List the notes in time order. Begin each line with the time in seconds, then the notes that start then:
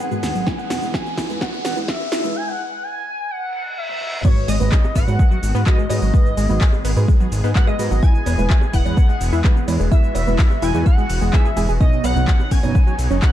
Already playing: D#3 G#3 B3 G#4 B4, riser
0.00 F#5
0.11 G#2 G#3 F#4 B4, cabasa
0.23 D#2, snare, open hi-hat, cabasa
0.35 G#1 F#3, cabasa
0.47 G#3 E4 G#5, kick, snare, cabasa
0.59 F#5, cabasa
0.70 E1 B3, snare, open hi-hat, cabasa
0.82 E1 G#3 E4 B4, cabasa
0.94 E5 G#5, kick, snare, cabasa
1.06 cabasa
1.18 E1 E4, kick, snare, open hi-hat, cabasa
1.29 E2 G#3 E4 B4, cabasa
1.41 G#3 E4 F#5, kick, snare, cabasa
1.53 cabasa
1.65 E1 B3, snare, open hi-hat, cabasa
1.76 E1 G#3 E4 B4, cabasa
1.88 E5, kick, snare, cabasa
2.01 cabasa
2.12 B1 E4, snare, open hi-hat, cabasa
2.24 E1 G#3 E4 B4, cabasa
2.36 G#5
2.48 F#5
2.83 G#5
3.30 F#5, reverse cymbal
3.77 E5
3.89 high tom
4.01 mid tom
4.13 mid tom
4.24 G#2 D#3 G#3 B3 F#4 B4 C#5, kick, crash, cabasa
4.37 cabasa
4.48 G#1 G#3 G#4 D#5, open hi-hat, cowbell, cabasa
4.60 G#1 G#2 G#3 F#4 B4, high conga, cabasa
4.72 G#4 G#5, kick, clap, cabasa
4.84 high bongo, cabasa
4.95 G#1 B3 B4 F#5, kick, open hi-hat, cabasa
5.07 G#2 G#3 F#4 B4, cowbell, cabasa
5.19 G#3 G#4, kick, cabasa
5.31 F#3 F#4, cabasa
5.43 G#1, open hi-hat, cabasa
5.55 G#2 B3 B4, cabasa
5.66 G#2 G#3 F#4 B4 D#5, kick, clap, cabasa
5.78 G#3 G#4, cabasa
5.90 G#2 G#3 F#4 B4 D#5, open hi-hat, cowbell, cabasa
6.02 G#1 F#3 F#4, cabasa
6.14 G#2 G#3 B3 F#4 B4, kick, cabasa
6.26 cabasa
6.37 G#1 G#3 G#4, open hi-hat, cabasa
6.49 G#1 G#2 G#3 F#4 B4, high conga, cabasa
6.61 G#4 G#5, kick, clap, open hi-hat, cabasa
6.73 high bongo, cabasa
6.85 G#1 B3 B4, open hi-hat, cabasa
6.96 G#2 G#3 F#4 B4, cabasa
7.08 G#3 G#4, kick, cabasa
7.20 F#3 F#4, cabasa
7.32 G#1, open hi-hat, cabasa
7.44 G#2 B3 B4, cabasa
7.55 G#2 G#3 F#4 B4 F#5, kick, clap, cabasa
7.67 G#3 G#4 D#5, cabasa
7.79 G#2 G#3 F#4 B4, open hi-hat, cabasa
7.91 G#1 F#3 F#4, cabasa
8.02 E3 G#3 E4 G#4 B4 E5 G#5, kick, cabasa
8.15 cabasa
8.26 E1 B3 B4, open hi-hat, cowbell, cabasa
8.38 E1 G#3 E4 B4, high conga, cabasa
8.50 E5 E6, kick, clap, cabasa
8.61 high bongo, cabasa
8.73 E1 E4 E5 F#5, kick, open hi-hat, cabasa
8.85 E2 G#3 E4 B4, cowbell, cabasa
8.97 B3 B4, kick, cabasa
9.09 G#3 G#4, cabasa
9.21 E1, open hi-hat, cabasa
9.33 E2 E4 E5, cabasa
9.44 G#3 E4 B4, kick, clap, cabasa
9.56 B3 B4, cabasa
9.68 E2 G#3 E4 B4, open hi-hat, cowbell, cabasa
9.80 E1 G#3 G#4, cabasa
9.91 G#3 E4 F#4 B4 E5, kick, cabasa
10.04 cabasa
10.15 E1 B3 B4, open hi-hat, cowbell, cabasa
10.27 E1 G#3 E4 B4, high conga, cabasa
10.39 E5 E6, kick, clap, open hi-hat, cabasa
10.50 high bongo, cabasa
10.62 E1 E4 E5 G#5, open hi-hat, cabasa
10.74 E2 G#3 E4 B4, cabasa
10.86 B3 B4 F#5, kick, cabasa
10.98 G#3 G#4, cabasa
11.10 E1, open hi-hat, cabasa
11.22 E1 G#3 G#4, cabasa
11.33 G#3 E4 G#4 B4 E5 G#5, kick, clap, cabasa
11.45 G#4 G#5, cabasa
11.57 E1 G#3 E4 G#4 B4 G#5, open hi-hat, high bongo, cabasa
11.69 E1 G#4 G#5, cabasa
11.80 B2 C#3 F#3 B3 C#4 D#4 C#5 D#5, kick, cabasa
11.93 cabasa
12.04 B1 B3 B4 F#5, open hi-hat, cowbell, cabasa
12.15 B1 B2 B3 D#4 C#5, high conga, cabasa
12.28 B4 B5, kick, clap, cabasa
12.40 high bongo, cabasa
12.51 B1 C#4 C#5 G#5, kick, open hi-hat, cabasa
12.63 F#1 B2 B3 D#4 C#5, cowbell, cabasa
12.75 B3 B4, kick, cabasa
12.87 F#3 F#4, cabasa
12.99 B1, open hi-hat, cabasa
13.11 F#1 C#4 C#5, cabasa
13.22 B2 B3 D#4 C#5 F#5, kick, clap, cabasa